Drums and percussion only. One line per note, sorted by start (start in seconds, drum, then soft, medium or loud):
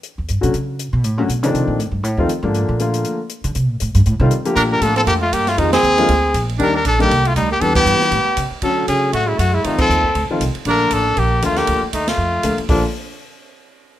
0.03 closed hi-hat soft
0.28 closed hi-hat medium
0.43 closed hi-hat soft
0.54 closed hi-hat soft
0.79 closed hi-hat medium
1.04 closed hi-hat soft
1.29 closed hi-hat medium
1.43 closed hi-hat soft
1.55 closed hi-hat soft
1.80 closed hi-hat medium
2.04 closed hi-hat soft
2.29 closed hi-hat medium
2.54 closed hi-hat soft
2.79 closed hi-hat medium
2.94 closed hi-hat soft
3.04 closed hi-hat soft
3.29 closed hi-hat medium
3.44 closed hi-hat soft
3.55 closed hi-hat soft
3.80 closed hi-hat medium
3.94 closed hi-hat medium
4.06 closed hi-hat soft
4.31 closed hi-hat medium
4.45 closed hi-hat soft
4.56 kick soft
4.56 ride medium
4.81 kick soft
4.81 hi-hat pedal medium
4.81 ride medium
4.96 ride soft
5.07 kick soft
5.07 ride medium
5.32 kick soft
5.32 hi-hat pedal medium
5.32 ride medium
5.47 snare soft
5.47 ride soft
5.58 kick soft
5.58 ride medium
5.73 snare medium
5.73 ride medium
5.83 hi-hat pedal medium
5.98 ride soft
6.09 kick soft
6.09 ride medium
6.34 kick soft
6.34 hi-hat pedal medium
6.34 ride medium
6.49 ride soft
6.59 kick soft
6.59 ride medium
6.85 kick soft
6.85 hi-hat pedal soft
6.85 ride medium
7.00 ride soft
7.10 kick soft
7.10 ride medium
7.25 ride medium
7.36 kick soft
7.36 hi-hat pedal medium
7.36 ride medium
7.61 kick soft
7.61 ride medium
7.75 kick medium
7.75 crash medium
7.86 hi-hat pedal medium
8.00 snare medium
8.11 kick soft
8.11 ride medium
8.37 kick soft
8.37 hi-hat pedal medium
8.37 ride medium
8.62 kick soft
8.62 ride medium
8.88 kick soft
8.88 hi-hat pedal medium
8.88 ride medium
9.13 kick soft
9.13 ride medium
9.39 kick soft
9.39 hi-hat pedal medium
9.39 ride medium
9.64 kick soft
9.64 ride medium
9.78 kick medium
9.78 crash medium
9.90 hi-hat pedal soft
10.04 kick medium
10.15 kick soft
10.15 ride medium
10.40 kick soft
10.40 hi-hat pedal medium
10.40 ride medium
10.55 ride soft
10.65 kick soft
10.65 ride medium
10.91 kick soft
10.91 hi-hat pedal medium
10.91 ride medium
11.17 kick soft
11.17 ride medium
11.42 kick soft
11.42 hi-hat pedal soft
11.42 ride medium
11.56 snare medium
11.56 ride soft
11.67 kick soft
11.67 ride medium
11.93 kick soft
11.93 hi-hat pedal soft
11.93 ride medium
12.07 snare medium
12.07 ride medium
12.43 kick soft
12.43 hi-hat pedal medium
12.43 ride medium
12.58 ride soft
12.69 kick medium
12.69 open hi-hat medium